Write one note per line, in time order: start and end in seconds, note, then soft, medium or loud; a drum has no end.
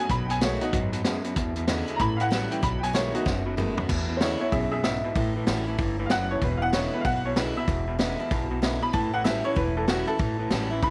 0.00 0.10 B3 soft
0.09 0.54 B1 medium
0.09 0.27 B2 medium
0.09 0.71 B2 medium
0.09 0.28 F#3 medium
0.09 0.29 B5 loud
0.09 kick loud
0.09 closed hi-hat medium
0.26 0.40 B2 medium
0.26 0.40 F#3 medium
0.26 0.28 G5 medium
0.26 closed hi-hat medium
0.31 0.42 G#5 loud
0.41 0.59 B2 medium
0.41 0.60 D#3 loud
0.41 0.60 G#3 medium
0.41 0.61 A3 loud
0.41 0.61 B3 loud
0.41 0.60 F#4 loud
0.41 0.61 C#5 medium
0.41 snare loud
0.41 closed hi-hat medium
0.61 0.72 B2 medium
0.61 0.72 F#3 medium
0.61 0.74 B3 medium
0.61 0.72 D#4 medium
0.61 0.73 F#4 medium
0.61 0.73 F#4 loud
0.61 closed hi-hat medium
0.73 1.17 F#2 medium
0.73 1.04 G#2 medium
0.73 0.91 B2 medium
0.73 0.91 F#3 loud
0.73 kick loud
0.73 closed hi-hat medium
0.93 1.03 B2 medium
0.93 1.04 F#3 loud
0.93 closed hi-hat medium
1.04 1.36 F#2 medium
1.04 1.23 B2 medium
1.04 1.23 G#3 medium
1.04 snare loud
1.04 closed hi-hat medium
1.24 1.35 B2 medium
1.24 1.35 F#3 medium
1.24 closed hi-hat medium
1.36 1.54 E2 medium
1.36 1.81 E2 loud
1.36 1.98 E2 medium
1.36 1.54 B2 medium
1.36 kick loud
1.36 closed hi-hat medium
1.56 1.67 E2 medium
1.56 1.67 B2 medium
1.56 closed hi-hat medium
1.68 1.86 E2 medium
1.68 1.86 C#3 loud
1.68 1.99 D3 medium
1.68 1.99 G#3 medium
1.68 1.99 B3 loud
1.68 2.00 E4 medium
1.68 snare loud
1.68 closed hi-hat medium
1.88 1.99 E2 medium
1.88 1.99 B2 medium
1.88 closed hi-hat medium
1.96 2.44 A1 medium
1.96 2.61 A2 medium
1.96 1.99 A#5 medium
1.96 kick loud
1.96 closed hi-hat medium
2.01 2.18 A2 medium
2.01 2.18 E3 medium
2.01 2.20 B5 loud
2.17 2.30 A2 medium
2.17 2.31 E3 loud
2.17 2.18 F5 medium
2.17 closed hi-hat medium
2.21 2.51 F#5 loud
2.30 2.49 A2 medium
2.30 2.61 E3 medium
2.30 2.50 F#3 loud
2.30 2.62 G3 loud
2.30 2.62 C#4 loud
2.30 2.62 E4 loud
2.30 snare loud
2.30 closed hi-hat medium
2.51 2.62 A2 medium
2.51 2.62 E3 medium
2.51 2.63 G5 medium
2.51 closed hi-hat medium
2.62 3.07 B1 loud
2.62 2.81 B2 medium
2.62 3.24 B2 medium
2.62 2.81 F#3 medium
2.62 2.82 B5 medium
2.62 kick loud
2.62 closed hi-hat medium
2.79 2.81 G5 medium
2.83 2.93 B2 medium
2.83 2.94 F#3 medium
2.83 2.94 G#5 loud
2.83 closed hi-hat medium
2.93 3.12 B2 medium
2.93 3.24 D#3 medium
2.93 3.13 G#3 medium
2.93 3.25 A3 loud
2.93 3.25 B3 loud
2.93 3.25 F#4 loud
2.93 3.14 C#5 loud
2.93 snare loud
2.93 closed hi-hat medium
3.14 3.25 B2 medium
3.14 3.25 F#3 medium
3.14 3.25 D#4 medium
3.14 3.26 F#4 loud
3.14 closed hi-hat medium
3.25 3.70 F#1 medium
3.25 3.87 F#2 medium
3.25 3.44 B2 medium
3.25 3.44 F#3 loud
3.25 kick loud
3.25 snare medium
3.46 3.56 B2 medium
3.46 3.57 F#3 medium
3.57 3.75 B2 medium
3.57 3.77 D#3 medium
3.57 3.76 G#3 medium
3.57 3.77 A3 medium
3.57 3.77 B3 medium
3.57 3.76 F#4 medium
3.57 mid tom medium
3.77 3.88 B2 medium
3.77 3.88 F#3 medium
3.77 3.90 B3 soft
3.77 3.89 F#4 medium
3.77 floor tom loud
3.88 4.07 E2 medium
3.88 4.34 E2 loud
3.88 4.50 E2 medium
3.88 4.07 B2 medium
3.88 kick loud
3.88 crash loud
4.09 4.20 E2 medium
4.09 4.20 B2 medium
4.17 4.39 E2 medium
4.17 4.40 D3 medium
4.17 4.20 C5 medium
4.17 snare loud
4.17 open hi-hat medium
4.21 4.39 C#3 medium
4.21 4.40 G#3 medium
4.21 4.41 B3 loud
4.21 4.38 E4 medium
4.21 4.40 E4 loud
4.21 4.39 C#5 medium
4.40 4.51 E2 medium
4.40 4.51 B2 medium
4.40 4.53 B3 soft
4.40 4.51 E4 medium
4.40 4.52 E4 medium
4.40 4.52 C#5 medium
4.52 4.97 B1 medium
4.52 4.70 E2 medium
4.52 4.83 F#2 medium
4.52 4.70 B2 medium
4.52 4.70 G#4 medium
4.52 4.70 E5 medium
4.52 kick loud
4.52 open hi-hat soft
4.71 4.82 E2 medium
4.71 4.83 B2 loud
4.71 4.83 G#4 medium
4.71 4.82 E5 medium
4.83 5.02 E2 medium
4.83 5.15 G#2 medium
4.83 5.02 C#3 medium
4.83 5.15 E5 loud
4.83 snare loud
4.83 open hi-hat medium
5.04 5.15 E2 medium
5.04 5.15 B2 medium
5.15 5.38 A1 medium
5.15 5.34 A2 medium
5.15 5.77 A2 medium
5.15 5.34 E3 medium
5.15 kick loud
5.15 open hi-hat medium
5.36 5.46 A2 medium
5.36 5.47 E3 medium
5.47 5.74 A1 medium
5.47 5.65 A2 medium
5.47 5.66 E3 loud
5.47 5.65 F#3 medium
5.47 5.67 G3 medium
5.47 5.67 C#4 loud
5.47 5.65 E4 loud
5.47 snare loud
5.47 open hi-hat medium
5.66 5.78 A2 medium
5.66 5.78 E3 medium
5.66 5.79 C#4 medium
5.66 5.78 E4 medium
5.78 6.06 G1 medium
5.78 6.09 G2 medium
5.78 5.97 A2 medium
5.78 5.97 E3 medium
5.78 kick loud
5.78 open hi-hat medium
5.99 6.10 A2 medium
5.99 6.10 E3 loud
6.06 6.09 F5 medium
6.10 6.38 F#1 medium
6.10 6.41 F#2 medium
6.10 6.29 A2 medium
6.10 6.29 F#3 loud
6.10 6.30 F#5 loud
6.10 snare loud
6.10 open hi-hat medium
6.31 6.41 A2 medium
6.31 6.41 E3 medium
6.31 6.42 C#5 medium
6.41 6.86 E1 loud
6.41 7.03 E2 medium
6.41 6.60 E2 medium
6.41 6.60 B2 medium
6.41 6.62 B4 medium
6.41 kick loud
6.41 open hi-hat medium
6.57 6.59 F5 medium
6.62 6.72 E2 medium
6.62 6.73 B2 medium
6.62 6.73 F#5 loud
6.73 6.91 E2 medium
6.73 6.92 C#3 medium
6.73 7.04 D3 medium
6.73 7.04 G#3 loud
6.73 7.04 B3 loud
6.73 7.05 E4 loud
6.73 6.93 C#5 medium
6.73 snare loud
6.73 open hi-hat soft
6.93 7.04 E2 medium
6.93 7.04 B2 medium
6.93 7.05 B4 medium
7.01 7.04 F5 medium
7.05 7.49 B1 medium
7.05 7.23 E2 medium
7.05 7.66 B2 medium
7.05 7.23 B2 medium
7.05 7.24 F#5 loud
7.05 kick loud
7.05 open hi-hat medium
7.25 7.35 E2 medium
7.25 7.36 B2 loud
7.25 7.36 C#5 medium
7.36 7.54 E2 medium
7.36 7.55 C#3 medium
7.36 7.55 D3 medium
7.36 7.56 G#3 medium
7.36 7.56 B3 medium
7.36 7.55 E4 loud
7.36 7.56 B4 medium
7.36 snare loud
7.36 open hi-hat medium
7.56 7.67 E2 medium
7.56 7.67 B2 medium
7.56 7.69 B3 soft
7.56 7.68 E4 medium
7.56 7.87 E5 loud
7.67 8.12 E1 loud
7.67 7.86 E2 medium
7.67 8.29 E2 medium
7.67 7.86 B2 medium
7.67 kick loud
7.67 open hi-hat medium
7.88 7.98 E2 medium
7.88 7.98 B2 medium
7.99 8.17 E2 medium
7.99 8.17 C#3 loud
7.99 8.18 D3 medium
7.99 8.19 G#3 medium
7.99 8.19 B3 loud
7.99 8.18 E4 loud
7.99 snare loud
7.99 open hi-hat medium
8.19 8.30 E2 medium
8.19 8.30 B2 medium
8.19 8.32 B3 soft
8.19 8.31 E4 medium
8.31 8.75 B1 medium
8.31 8.49 E2 medium
8.31 8.49 B2 medium
8.31 8.92 B2 medium
8.31 kick loud
8.31 open hi-hat medium
8.50 8.61 E2 medium
8.50 8.61 B2 medium
8.62 8.80 E2 medium
8.62 8.80 C#3 medium
8.62 8.81 D3 medium
8.62 8.82 G#3 medium
8.62 8.82 B3 medium
8.62 8.81 E4 loud
8.62 snare loud
8.62 open hi-hat medium
8.82 8.93 E2 medium
8.82 8.93 B2 medium
8.82 8.94 B3 soft
8.82 8.93 E4 medium
8.82 8.94 B5 loud
8.93 9.38 A1 medium
8.93 9.12 A2 medium
8.93 9.54 A2 medium
8.93 9.12 E3 medium
8.93 9.13 A5 loud
8.93 kick loud
8.93 open hi-hat medium
9.14 9.24 A2 medium
9.14 9.24 E3 medium
9.14 9.25 F#5 loud
9.24 9.43 A2 medium
9.24 9.44 E3 loud
9.24 9.44 F#3 medium
9.24 9.44 G3 loud
9.24 9.45 C#4 loud
9.24 9.43 E4 loud
9.24 9.44 E5 medium
9.24 snare loud
9.24 open hi-hat medium
9.44 9.56 A2 medium
9.44 9.56 E3 medium
9.44 9.57 C#4 soft
9.44 9.56 E4 medium
9.44 9.56 C#5 loud
9.56 10.01 E1 medium
9.56 10.17 E2 medium
9.56 9.75 A2 medium
9.56 9.75 E3 loud
9.56 9.76 B4 medium
9.56 kick loud
9.56 open hi-hat soft
9.77 9.87 A2 medium
9.77 9.88 E3 medium
9.77 9.88 A4 medium
9.88 10.06 A2 medium
9.88 10.07 E3 medium
9.88 10.06 F#3 loud
9.88 10.07 G3 medium
9.88 10.08 C#4 medium
9.88 10.06 E4 medium
9.88 10.07 F#4 medium
9.88 snare loud
9.88 open hi-hat medium
10.07 10.19 A2 medium
10.07 10.19 E3 medium
10.07 10.20 C#4 soft
10.07 10.19 E4 medium
10.07 10.69 A4 loud
10.19 10.42 A1 medium
10.19 10.80 A2 medium
10.19 10.38 A2 medium
10.19 10.38 E3 loud
10.19 kick loud
10.19 open hi-hat soft
10.39 10.50 A2 medium
10.39 10.50 E3 medium
10.50 10.78 A1 medium
10.50 10.69 A2 medium
10.50 10.70 E3 medium
10.50 10.69 F#3 loud
10.50 10.70 G3 medium
10.50 10.71 C#4 loud
10.50 10.69 E4 loud
10.50 snare loud
10.50 open hi-hat medium
10.70 10.82 A2 medium
10.70 10.82 E3 medium
10.70 10.83 C#4 medium
10.70 10.82 E4 medium
10.82 10.90 G1 medium
10.82 10.90 E2 medium
10.82 10.90 A2 medium
10.82 10.90 E3 loud
10.82 10.90 B5 loud
10.82 kick loud
10.82 open hi-hat medium